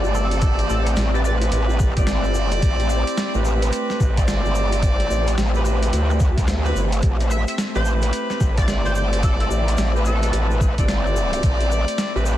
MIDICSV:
0, 0, Header, 1, 6, 480
1, 0, Start_track
1, 0, Key_signature, 0, "minor"
1, 0, Tempo, 550459
1, 368, Time_signature, 4, 2, 24, 8
1, 10793, End_track
2, 0, Start_track
2, 0, Title_t, "Analog synth lead"
2, 0, Program_c, 0, 81
2, 126, Note_on_c, 0, 69, 96
2, 518, Note_off_c, 0, 69, 0
2, 605, Note_on_c, 0, 69, 92
2, 790, Note_off_c, 0, 69, 0
2, 994, Note_on_c, 0, 74, 88
2, 1053, Note_off_c, 0, 74, 0
2, 1086, Note_on_c, 0, 74, 79
2, 1183, Note_off_c, 0, 74, 0
2, 6370, Note_on_c, 0, 76, 84
2, 6465, Note_off_c, 0, 76, 0
2, 6520, Note_on_c, 0, 76, 75
2, 6576, Note_off_c, 0, 76, 0
2, 6760, Note_on_c, 0, 72, 90
2, 6905, Note_off_c, 0, 72, 0
2, 7478, Note_on_c, 0, 74, 98
2, 7624, Note_off_c, 0, 74, 0
2, 7718, Note_on_c, 0, 72, 94
2, 7776, Note_off_c, 0, 72, 0
2, 7806, Note_on_c, 0, 72, 78
2, 7904, Note_off_c, 0, 72, 0
2, 8047, Note_on_c, 0, 69, 91
2, 8144, Note_off_c, 0, 69, 0
2, 8198, Note_on_c, 0, 69, 78
2, 8255, Note_off_c, 0, 69, 0
2, 8772, Note_on_c, 0, 69, 98
2, 9161, Note_off_c, 0, 69, 0
2, 10793, End_track
3, 0, Start_track
3, 0, Title_t, "Horn section"
3, 0, Program_c, 1, 61
3, 0, Note_on_c, 1, 60, 103
3, 0, Note_on_c, 1, 64, 92
3, 0, Note_on_c, 1, 67, 93
3, 0, Note_on_c, 1, 74, 113
3, 961, Note_off_c, 1, 60, 0
3, 961, Note_off_c, 1, 64, 0
3, 961, Note_off_c, 1, 67, 0
3, 961, Note_off_c, 1, 74, 0
3, 997, Note_on_c, 1, 60, 85
3, 997, Note_on_c, 1, 67, 77
3, 997, Note_on_c, 1, 71, 93
3, 998, Note_on_c, 1, 64, 76
3, 1065, Note_off_c, 1, 67, 0
3, 1066, Note_off_c, 1, 60, 0
3, 1066, Note_off_c, 1, 64, 0
3, 1066, Note_off_c, 1, 71, 0
3, 1086, Note_on_c, 1, 60, 82
3, 1086, Note_on_c, 1, 64, 81
3, 1086, Note_on_c, 1, 67, 77
3, 1086, Note_on_c, 1, 71, 95
3, 1681, Note_off_c, 1, 64, 0
3, 1681, Note_off_c, 1, 67, 0
3, 1681, Note_off_c, 1, 71, 0
3, 1682, Note_off_c, 1, 60, 0
3, 1718, Note_on_c, 1, 60, 106
3, 1718, Note_on_c, 1, 67, 98
3, 1719, Note_on_c, 1, 64, 97
3, 1719, Note_on_c, 1, 74, 114
3, 2882, Note_off_c, 1, 60, 0
3, 2882, Note_off_c, 1, 67, 0
3, 2882, Note_off_c, 1, 74, 0
3, 2883, Note_off_c, 1, 64, 0
3, 2918, Note_on_c, 1, 71, 90
3, 2919, Note_on_c, 1, 64, 74
3, 2919, Note_on_c, 1, 67, 75
3, 2920, Note_on_c, 1, 60, 86
3, 2986, Note_off_c, 1, 71, 0
3, 2987, Note_off_c, 1, 60, 0
3, 2987, Note_off_c, 1, 64, 0
3, 2987, Note_off_c, 1, 67, 0
3, 3009, Note_on_c, 1, 71, 91
3, 3010, Note_on_c, 1, 60, 84
3, 3010, Note_on_c, 1, 64, 73
3, 3010, Note_on_c, 1, 67, 77
3, 3603, Note_off_c, 1, 60, 0
3, 3603, Note_off_c, 1, 64, 0
3, 3603, Note_off_c, 1, 71, 0
3, 3604, Note_off_c, 1, 67, 0
3, 3638, Note_on_c, 1, 60, 100
3, 3638, Note_on_c, 1, 64, 91
3, 3638, Note_on_c, 1, 67, 98
3, 3638, Note_on_c, 1, 74, 115
3, 4691, Note_off_c, 1, 60, 0
3, 4691, Note_off_c, 1, 64, 0
3, 4691, Note_off_c, 1, 67, 0
3, 4691, Note_off_c, 1, 74, 0
3, 4839, Note_on_c, 1, 64, 74
3, 4839, Note_on_c, 1, 71, 93
3, 4840, Note_on_c, 1, 60, 83
3, 4840, Note_on_c, 1, 67, 78
3, 4907, Note_off_c, 1, 60, 0
3, 4907, Note_off_c, 1, 64, 0
3, 4907, Note_off_c, 1, 67, 0
3, 4907, Note_off_c, 1, 71, 0
3, 4927, Note_on_c, 1, 71, 89
3, 4928, Note_on_c, 1, 60, 84
3, 4928, Note_on_c, 1, 64, 75
3, 4928, Note_on_c, 1, 67, 73
3, 5522, Note_off_c, 1, 64, 0
3, 5522, Note_off_c, 1, 67, 0
3, 5522, Note_off_c, 1, 71, 0
3, 5523, Note_off_c, 1, 60, 0
3, 5799, Note_on_c, 1, 60, 89
3, 5800, Note_on_c, 1, 64, 90
3, 5800, Note_on_c, 1, 67, 86
3, 5800, Note_on_c, 1, 71, 105
3, 5932, Note_off_c, 1, 60, 0
3, 5932, Note_off_c, 1, 64, 0
3, 5932, Note_off_c, 1, 67, 0
3, 5932, Note_off_c, 1, 71, 0
3, 6758, Note_on_c, 1, 67, 79
3, 6759, Note_on_c, 1, 60, 82
3, 6759, Note_on_c, 1, 64, 77
3, 6759, Note_on_c, 1, 71, 93
3, 6826, Note_off_c, 1, 64, 0
3, 6826, Note_off_c, 1, 67, 0
3, 6827, Note_off_c, 1, 60, 0
3, 6827, Note_off_c, 1, 71, 0
3, 6847, Note_on_c, 1, 67, 75
3, 6848, Note_on_c, 1, 60, 79
3, 6848, Note_on_c, 1, 71, 92
3, 6849, Note_on_c, 1, 64, 73
3, 7442, Note_off_c, 1, 67, 0
3, 7443, Note_off_c, 1, 60, 0
3, 7443, Note_off_c, 1, 64, 0
3, 7443, Note_off_c, 1, 71, 0
3, 7481, Note_on_c, 1, 60, 99
3, 7481, Note_on_c, 1, 64, 89
3, 7481, Note_on_c, 1, 67, 90
3, 7481, Note_on_c, 1, 74, 109
3, 8644, Note_off_c, 1, 60, 0
3, 8644, Note_off_c, 1, 64, 0
3, 8644, Note_off_c, 1, 67, 0
3, 8644, Note_off_c, 1, 74, 0
3, 8679, Note_on_c, 1, 60, 86
3, 8679, Note_on_c, 1, 64, 76
3, 8679, Note_on_c, 1, 67, 79
3, 8680, Note_on_c, 1, 71, 93
3, 8747, Note_off_c, 1, 60, 0
3, 8747, Note_off_c, 1, 64, 0
3, 8747, Note_off_c, 1, 67, 0
3, 8747, Note_off_c, 1, 71, 0
3, 8769, Note_on_c, 1, 67, 75
3, 8769, Note_on_c, 1, 71, 90
3, 8770, Note_on_c, 1, 60, 85
3, 8770, Note_on_c, 1, 64, 76
3, 9363, Note_off_c, 1, 60, 0
3, 9363, Note_off_c, 1, 64, 0
3, 9363, Note_off_c, 1, 67, 0
3, 9363, Note_off_c, 1, 71, 0
3, 9401, Note_on_c, 1, 60, 100
3, 9401, Note_on_c, 1, 74, 114
3, 9402, Note_on_c, 1, 64, 96
3, 9402, Note_on_c, 1, 67, 96
3, 10563, Note_off_c, 1, 74, 0
3, 10564, Note_off_c, 1, 60, 0
3, 10564, Note_off_c, 1, 64, 0
3, 10564, Note_off_c, 1, 67, 0
3, 10597, Note_on_c, 1, 60, 84
3, 10597, Note_on_c, 1, 64, 76
3, 10597, Note_on_c, 1, 67, 76
3, 10597, Note_on_c, 1, 71, 95
3, 10666, Note_off_c, 1, 60, 0
3, 10666, Note_off_c, 1, 64, 0
3, 10666, Note_off_c, 1, 67, 0
3, 10666, Note_off_c, 1, 71, 0
3, 10684, Note_on_c, 1, 71, 93
3, 10685, Note_on_c, 1, 60, 85
3, 10685, Note_on_c, 1, 64, 75
3, 10685, Note_on_c, 1, 67, 77
3, 10793, Note_off_c, 1, 60, 0
3, 10793, Note_off_c, 1, 64, 0
3, 10793, Note_off_c, 1, 67, 0
3, 10793, Note_off_c, 1, 71, 0
3, 10793, End_track
4, 0, Start_track
4, 0, Title_t, "Ambient pad"
4, 0, Program_c, 2, 92
4, 0, Note_on_c, 2, 57, 75
4, 0, Note_on_c, 2, 60, 72
4, 0, Note_on_c, 2, 67, 86
4, 6123, Note_off_c, 2, 67, 0
4, 10793, Note_off_c, 2, 57, 0
4, 10793, Note_off_c, 2, 60, 0
4, 10793, End_track
5, 0, Start_track
5, 0, Title_t, "Wobble bass"
5, 0, Program_c, 3, 39
5, 0, Note_on_c, 3, 31, 96
5, 592, Note_off_c, 3, 31, 0
5, 607, Note_on_c, 3, 33, 99
5, 833, Note_off_c, 3, 33, 0
5, 847, Note_on_c, 3, 33, 103
5, 1313, Note_off_c, 3, 33, 0
5, 1327, Note_on_c, 3, 33, 91
5, 1694, Note_off_c, 3, 33, 0
5, 1719, Note_on_c, 3, 31, 104
5, 2112, Note_off_c, 3, 31, 0
5, 2112, Note_on_c, 3, 30, 104
5, 2274, Note_off_c, 3, 30, 0
5, 2288, Note_on_c, 3, 33, 92
5, 2655, Note_off_c, 3, 33, 0
5, 2919, Note_on_c, 3, 33, 96
5, 3234, Note_off_c, 3, 33, 0
5, 3490, Note_on_c, 3, 33, 91
5, 3715, Note_off_c, 3, 33, 0
5, 3730, Note_on_c, 3, 31, 98
5, 4435, Note_off_c, 3, 31, 0
5, 4449, Note_on_c, 3, 33, 97
5, 4674, Note_off_c, 3, 33, 0
5, 4689, Note_on_c, 3, 33, 97
5, 5154, Note_off_c, 3, 33, 0
5, 5169, Note_on_c, 3, 38, 100
5, 5874, Note_off_c, 3, 38, 0
5, 5888, Note_on_c, 3, 31, 94
5, 6114, Note_off_c, 3, 31, 0
5, 6130, Note_on_c, 3, 33, 93
5, 6496, Note_off_c, 3, 33, 0
5, 6762, Note_on_c, 3, 33, 97
5, 7075, Note_off_c, 3, 33, 0
5, 7330, Note_on_c, 3, 33, 101
5, 7555, Note_off_c, 3, 33, 0
5, 7570, Note_on_c, 3, 31, 97
5, 8275, Note_off_c, 3, 31, 0
5, 8287, Note_on_c, 3, 33, 101
5, 8513, Note_off_c, 3, 33, 0
5, 8528, Note_on_c, 3, 33, 99
5, 8994, Note_off_c, 3, 33, 0
5, 9009, Note_on_c, 3, 33, 89
5, 9375, Note_off_c, 3, 33, 0
5, 9402, Note_on_c, 3, 31, 96
5, 9956, Note_off_c, 3, 31, 0
5, 9970, Note_on_c, 3, 33, 96
5, 10336, Note_off_c, 3, 33, 0
5, 10601, Note_on_c, 3, 33, 101
5, 10793, Note_off_c, 3, 33, 0
5, 10793, End_track
6, 0, Start_track
6, 0, Title_t, "Drums"
6, 36, Note_on_c, 9, 82, 30
6, 123, Note_off_c, 9, 82, 0
6, 129, Note_on_c, 9, 82, 96
6, 216, Note_off_c, 9, 82, 0
6, 273, Note_on_c, 9, 42, 56
6, 278, Note_on_c, 9, 82, 37
6, 360, Note_off_c, 9, 42, 0
6, 360, Note_off_c, 9, 82, 0
6, 360, Note_on_c, 9, 82, 55
6, 362, Note_on_c, 9, 42, 70
6, 367, Note_on_c, 9, 36, 127
6, 447, Note_off_c, 9, 82, 0
6, 449, Note_off_c, 9, 42, 0
6, 454, Note_off_c, 9, 36, 0
6, 512, Note_on_c, 9, 82, 27
6, 513, Note_on_c, 9, 42, 39
6, 599, Note_off_c, 9, 82, 0
6, 600, Note_off_c, 9, 42, 0
6, 608, Note_on_c, 9, 82, 89
6, 695, Note_off_c, 9, 82, 0
6, 754, Note_on_c, 9, 42, 54
6, 754, Note_on_c, 9, 82, 43
6, 839, Note_off_c, 9, 82, 0
6, 839, Note_on_c, 9, 82, 53
6, 842, Note_off_c, 9, 42, 0
6, 845, Note_on_c, 9, 38, 120
6, 845, Note_on_c, 9, 42, 67
6, 926, Note_off_c, 9, 82, 0
6, 932, Note_off_c, 9, 38, 0
6, 932, Note_off_c, 9, 42, 0
6, 1001, Note_on_c, 9, 82, 28
6, 1088, Note_off_c, 9, 82, 0
6, 1090, Note_on_c, 9, 82, 92
6, 1177, Note_off_c, 9, 82, 0
6, 1234, Note_on_c, 9, 42, 55
6, 1236, Note_on_c, 9, 82, 43
6, 1322, Note_off_c, 9, 42, 0
6, 1323, Note_off_c, 9, 82, 0
6, 1324, Note_on_c, 9, 42, 72
6, 1324, Note_on_c, 9, 82, 47
6, 1411, Note_off_c, 9, 42, 0
6, 1411, Note_off_c, 9, 82, 0
6, 1479, Note_on_c, 9, 82, 30
6, 1565, Note_off_c, 9, 82, 0
6, 1565, Note_on_c, 9, 82, 94
6, 1568, Note_on_c, 9, 36, 109
6, 1652, Note_off_c, 9, 82, 0
6, 1655, Note_off_c, 9, 36, 0
6, 1715, Note_on_c, 9, 42, 56
6, 1719, Note_on_c, 9, 36, 113
6, 1719, Note_on_c, 9, 82, 47
6, 1802, Note_off_c, 9, 42, 0
6, 1803, Note_on_c, 9, 38, 122
6, 1803, Note_on_c, 9, 42, 66
6, 1806, Note_off_c, 9, 36, 0
6, 1806, Note_off_c, 9, 82, 0
6, 1810, Note_on_c, 9, 82, 49
6, 1890, Note_off_c, 9, 38, 0
6, 1890, Note_off_c, 9, 42, 0
6, 1897, Note_off_c, 9, 82, 0
6, 1954, Note_on_c, 9, 82, 31
6, 2041, Note_off_c, 9, 82, 0
6, 2045, Note_on_c, 9, 82, 95
6, 2132, Note_off_c, 9, 82, 0
6, 2192, Note_on_c, 9, 82, 39
6, 2195, Note_on_c, 9, 42, 57
6, 2279, Note_off_c, 9, 82, 0
6, 2282, Note_off_c, 9, 42, 0
6, 2287, Note_on_c, 9, 82, 55
6, 2288, Note_on_c, 9, 42, 65
6, 2289, Note_on_c, 9, 36, 127
6, 2374, Note_off_c, 9, 82, 0
6, 2375, Note_off_c, 9, 42, 0
6, 2376, Note_off_c, 9, 36, 0
6, 2439, Note_on_c, 9, 42, 37
6, 2442, Note_on_c, 9, 82, 28
6, 2526, Note_off_c, 9, 42, 0
6, 2526, Note_off_c, 9, 82, 0
6, 2526, Note_on_c, 9, 82, 106
6, 2613, Note_off_c, 9, 82, 0
6, 2680, Note_on_c, 9, 42, 56
6, 2680, Note_on_c, 9, 82, 42
6, 2766, Note_off_c, 9, 82, 0
6, 2766, Note_on_c, 9, 82, 54
6, 2768, Note_off_c, 9, 42, 0
6, 2769, Note_on_c, 9, 38, 121
6, 2769, Note_on_c, 9, 42, 67
6, 2853, Note_off_c, 9, 82, 0
6, 2856, Note_off_c, 9, 38, 0
6, 2856, Note_off_c, 9, 42, 0
6, 2914, Note_on_c, 9, 82, 30
6, 3002, Note_off_c, 9, 82, 0
6, 3008, Note_on_c, 9, 82, 101
6, 3095, Note_off_c, 9, 82, 0
6, 3160, Note_on_c, 9, 42, 57
6, 3162, Note_on_c, 9, 82, 42
6, 3246, Note_off_c, 9, 82, 0
6, 3246, Note_on_c, 9, 82, 52
6, 3247, Note_off_c, 9, 42, 0
6, 3249, Note_on_c, 9, 42, 71
6, 3333, Note_off_c, 9, 82, 0
6, 3336, Note_off_c, 9, 42, 0
6, 3400, Note_on_c, 9, 40, 39
6, 3402, Note_on_c, 9, 82, 27
6, 3487, Note_off_c, 9, 40, 0
6, 3489, Note_off_c, 9, 82, 0
6, 3490, Note_on_c, 9, 36, 109
6, 3492, Note_on_c, 9, 82, 96
6, 3577, Note_off_c, 9, 36, 0
6, 3579, Note_off_c, 9, 82, 0
6, 3639, Note_on_c, 9, 42, 59
6, 3640, Note_on_c, 9, 36, 106
6, 3642, Note_on_c, 9, 82, 43
6, 3726, Note_off_c, 9, 42, 0
6, 3727, Note_off_c, 9, 36, 0
6, 3730, Note_off_c, 9, 82, 0
6, 3730, Note_on_c, 9, 38, 116
6, 3730, Note_on_c, 9, 42, 67
6, 3730, Note_on_c, 9, 82, 61
6, 3817, Note_off_c, 9, 82, 0
6, 3818, Note_off_c, 9, 38, 0
6, 3818, Note_off_c, 9, 42, 0
6, 3884, Note_on_c, 9, 82, 30
6, 3969, Note_off_c, 9, 82, 0
6, 3969, Note_on_c, 9, 82, 96
6, 4057, Note_off_c, 9, 82, 0
6, 4117, Note_on_c, 9, 82, 45
6, 4121, Note_on_c, 9, 42, 55
6, 4204, Note_off_c, 9, 82, 0
6, 4208, Note_off_c, 9, 42, 0
6, 4209, Note_on_c, 9, 36, 125
6, 4209, Note_on_c, 9, 42, 61
6, 4213, Note_on_c, 9, 82, 58
6, 4296, Note_off_c, 9, 36, 0
6, 4296, Note_off_c, 9, 42, 0
6, 4300, Note_off_c, 9, 82, 0
6, 4359, Note_on_c, 9, 42, 37
6, 4363, Note_on_c, 9, 82, 24
6, 4446, Note_off_c, 9, 42, 0
6, 4450, Note_off_c, 9, 82, 0
6, 4454, Note_on_c, 9, 82, 88
6, 4541, Note_off_c, 9, 82, 0
6, 4595, Note_on_c, 9, 82, 43
6, 4602, Note_on_c, 9, 42, 50
6, 4683, Note_off_c, 9, 82, 0
6, 4689, Note_off_c, 9, 42, 0
6, 4689, Note_on_c, 9, 38, 121
6, 4689, Note_on_c, 9, 42, 63
6, 4691, Note_on_c, 9, 82, 53
6, 4776, Note_off_c, 9, 38, 0
6, 4776, Note_off_c, 9, 42, 0
6, 4778, Note_off_c, 9, 82, 0
6, 4836, Note_on_c, 9, 82, 25
6, 4923, Note_off_c, 9, 82, 0
6, 4928, Note_on_c, 9, 82, 102
6, 5015, Note_off_c, 9, 82, 0
6, 5079, Note_on_c, 9, 42, 51
6, 5079, Note_on_c, 9, 82, 40
6, 5166, Note_off_c, 9, 82, 0
6, 5167, Note_off_c, 9, 42, 0
6, 5170, Note_on_c, 9, 42, 70
6, 5171, Note_on_c, 9, 82, 51
6, 5257, Note_off_c, 9, 42, 0
6, 5258, Note_off_c, 9, 82, 0
6, 5321, Note_on_c, 9, 82, 26
6, 5406, Note_off_c, 9, 82, 0
6, 5406, Note_on_c, 9, 82, 97
6, 5409, Note_on_c, 9, 36, 114
6, 5493, Note_off_c, 9, 82, 0
6, 5496, Note_off_c, 9, 36, 0
6, 5560, Note_on_c, 9, 36, 111
6, 5560, Note_on_c, 9, 42, 56
6, 5567, Note_on_c, 9, 82, 46
6, 5646, Note_off_c, 9, 82, 0
6, 5646, Note_on_c, 9, 82, 51
6, 5647, Note_off_c, 9, 36, 0
6, 5648, Note_off_c, 9, 42, 0
6, 5649, Note_on_c, 9, 38, 115
6, 5649, Note_on_c, 9, 42, 62
6, 5733, Note_off_c, 9, 82, 0
6, 5736, Note_off_c, 9, 38, 0
6, 5736, Note_off_c, 9, 42, 0
6, 5803, Note_on_c, 9, 82, 29
6, 5890, Note_off_c, 9, 82, 0
6, 5897, Note_on_c, 9, 82, 99
6, 5984, Note_off_c, 9, 82, 0
6, 6038, Note_on_c, 9, 42, 51
6, 6038, Note_on_c, 9, 82, 43
6, 6121, Note_off_c, 9, 82, 0
6, 6121, Note_on_c, 9, 82, 48
6, 6126, Note_off_c, 9, 42, 0
6, 6129, Note_on_c, 9, 42, 60
6, 6130, Note_on_c, 9, 36, 125
6, 6208, Note_off_c, 9, 82, 0
6, 6216, Note_off_c, 9, 42, 0
6, 6217, Note_off_c, 9, 36, 0
6, 6278, Note_on_c, 9, 82, 29
6, 6282, Note_on_c, 9, 42, 35
6, 6365, Note_off_c, 9, 82, 0
6, 6370, Note_off_c, 9, 42, 0
6, 6372, Note_on_c, 9, 82, 90
6, 6459, Note_off_c, 9, 82, 0
6, 6514, Note_on_c, 9, 82, 42
6, 6523, Note_on_c, 9, 42, 50
6, 6601, Note_off_c, 9, 82, 0
6, 6611, Note_off_c, 9, 42, 0
6, 6611, Note_on_c, 9, 38, 113
6, 6611, Note_on_c, 9, 42, 58
6, 6612, Note_on_c, 9, 82, 56
6, 6698, Note_off_c, 9, 38, 0
6, 6698, Note_off_c, 9, 42, 0
6, 6699, Note_off_c, 9, 82, 0
6, 6758, Note_on_c, 9, 82, 28
6, 6845, Note_off_c, 9, 82, 0
6, 6846, Note_on_c, 9, 82, 95
6, 6934, Note_off_c, 9, 82, 0
6, 6990, Note_on_c, 9, 82, 41
6, 7000, Note_on_c, 9, 42, 52
6, 7077, Note_off_c, 9, 82, 0
6, 7087, Note_off_c, 9, 42, 0
6, 7087, Note_on_c, 9, 82, 51
6, 7088, Note_on_c, 9, 42, 66
6, 7175, Note_off_c, 9, 42, 0
6, 7175, Note_off_c, 9, 82, 0
6, 7238, Note_on_c, 9, 40, 37
6, 7240, Note_on_c, 9, 82, 26
6, 7325, Note_off_c, 9, 40, 0
6, 7328, Note_off_c, 9, 82, 0
6, 7330, Note_on_c, 9, 36, 107
6, 7330, Note_on_c, 9, 82, 93
6, 7417, Note_off_c, 9, 36, 0
6, 7417, Note_off_c, 9, 82, 0
6, 7478, Note_on_c, 9, 42, 52
6, 7481, Note_on_c, 9, 36, 105
6, 7483, Note_on_c, 9, 82, 41
6, 7565, Note_off_c, 9, 42, 0
6, 7568, Note_off_c, 9, 36, 0
6, 7568, Note_on_c, 9, 38, 121
6, 7568, Note_on_c, 9, 42, 63
6, 7571, Note_off_c, 9, 82, 0
6, 7571, Note_on_c, 9, 82, 58
6, 7655, Note_off_c, 9, 38, 0
6, 7655, Note_off_c, 9, 42, 0
6, 7658, Note_off_c, 9, 82, 0
6, 7720, Note_on_c, 9, 82, 28
6, 7806, Note_off_c, 9, 82, 0
6, 7806, Note_on_c, 9, 82, 89
6, 7894, Note_off_c, 9, 82, 0
6, 7960, Note_on_c, 9, 42, 54
6, 7964, Note_on_c, 9, 82, 40
6, 8047, Note_off_c, 9, 42, 0
6, 8047, Note_off_c, 9, 82, 0
6, 8047, Note_on_c, 9, 82, 53
6, 8049, Note_on_c, 9, 42, 62
6, 8050, Note_on_c, 9, 36, 127
6, 8135, Note_off_c, 9, 82, 0
6, 8137, Note_off_c, 9, 36, 0
6, 8137, Note_off_c, 9, 42, 0
6, 8198, Note_on_c, 9, 42, 35
6, 8200, Note_on_c, 9, 82, 25
6, 8286, Note_off_c, 9, 42, 0
6, 8287, Note_off_c, 9, 82, 0
6, 8292, Note_on_c, 9, 82, 90
6, 8379, Note_off_c, 9, 82, 0
6, 8442, Note_on_c, 9, 42, 51
6, 8443, Note_on_c, 9, 82, 41
6, 8521, Note_off_c, 9, 82, 0
6, 8521, Note_on_c, 9, 82, 56
6, 8529, Note_off_c, 9, 42, 0
6, 8529, Note_on_c, 9, 38, 112
6, 8529, Note_on_c, 9, 42, 65
6, 8608, Note_off_c, 9, 82, 0
6, 8616, Note_off_c, 9, 38, 0
6, 8616, Note_off_c, 9, 42, 0
6, 8686, Note_on_c, 9, 82, 27
6, 8766, Note_off_c, 9, 82, 0
6, 8766, Note_on_c, 9, 82, 81
6, 8854, Note_off_c, 9, 82, 0
6, 8917, Note_on_c, 9, 82, 42
6, 8921, Note_on_c, 9, 42, 49
6, 9004, Note_off_c, 9, 82, 0
6, 9008, Note_off_c, 9, 42, 0
6, 9009, Note_on_c, 9, 42, 66
6, 9013, Note_on_c, 9, 82, 50
6, 9096, Note_off_c, 9, 42, 0
6, 9100, Note_off_c, 9, 82, 0
6, 9163, Note_on_c, 9, 82, 29
6, 9250, Note_off_c, 9, 82, 0
6, 9250, Note_on_c, 9, 36, 104
6, 9254, Note_on_c, 9, 82, 92
6, 9338, Note_off_c, 9, 36, 0
6, 9341, Note_off_c, 9, 82, 0
6, 9401, Note_on_c, 9, 36, 103
6, 9401, Note_on_c, 9, 42, 54
6, 9404, Note_on_c, 9, 82, 38
6, 9488, Note_off_c, 9, 42, 0
6, 9489, Note_off_c, 9, 36, 0
6, 9491, Note_off_c, 9, 82, 0
6, 9491, Note_on_c, 9, 38, 104
6, 9491, Note_on_c, 9, 42, 58
6, 9491, Note_on_c, 9, 82, 46
6, 9578, Note_off_c, 9, 38, 0
6, 9578, Note_off_c, 9, 42, 0
6, 9578, Note_off_c, 9, 82, 0
6, 9648, Note_on_c, 9, 82, 24
6, 9733, Note_off_c, 9, 82, 0
6, 9733, Note_on_c, 9, 82, 92
6, 9820, Note_off_c, 9, 82, 0
6, 9880, Note_on_c, 9, 42, 51
6, 9887, Note_on_c, 9, 82, 37
6, 9967, Note_off_c, 9, 42, 0
6, 9967, Note_on_c, 9, 42, 63
6, 9971, Note_on_c, 9, 36, 122
6, 9972, Note_off_c, 9, 82, 0
6, 9972, Note_on_c, 9, 82, 57
6, 10054, Note_off_c, 9, 42, 0
6, 10058, Note_off_c, 9, 36, 0
6, 10059, Note_off_c, 9, 82, 0
6, 10116, Note_on_c, 9, 82, 27
6, 10119, Note_on_c, 9, 42, 37
6, 10203, Note_off_c, 9, 82, 0
6, 10207, Note_off_c, 9, 42, 0
6, 10216, Note_on_c, 9, 82, 84
6, 10304, Note_off_c, 9, 82, 0
6, 10360, Note_on_c, 9, 42, 52
6, 10360, Note_on_c, 9, 82, 39
6, 10447, Note_off_c, 9, 82, 0
6, 10448, Note_off_c, 9, 42, 0
6, 10448, Note_on_c, 9, 38, 111
6, 10448, Note_on_c, 9, 42, 64
6, 10448, Note_on_c, 9, 82, 55
6, 10535, Note_off_c, 9, 38, 0
6, 10535, Note_off_c, 9, 42, 0
6, 10535, Note_off_c, 9, 82, 0
6, 10608, Note_on_c, 9, 82, 23
6, 10690, Note_off_c, 9, 82, 0
6, 10690, Note_on_c, 9, 82, 87
6, 10777, Note_off_c, 9, 82, 0
6, 10793, End_track
0, 0, End_of_file